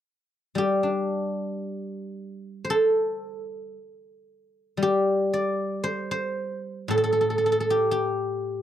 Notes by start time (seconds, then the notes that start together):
0.55 G3 G4
0.83 D4
2.65 C5
2.70 A4
4.77 G3
4.83 G4
5.33 D5
5.84 C5
6.11 C5
6.88 A2 A4
6.98 A4
7.04 A4
7.13 A4
7.21 A4
7.30 A4
7.38 A4
7.46 A4
7.52 A4
7.60 A4
7.70 G4
7.91 G4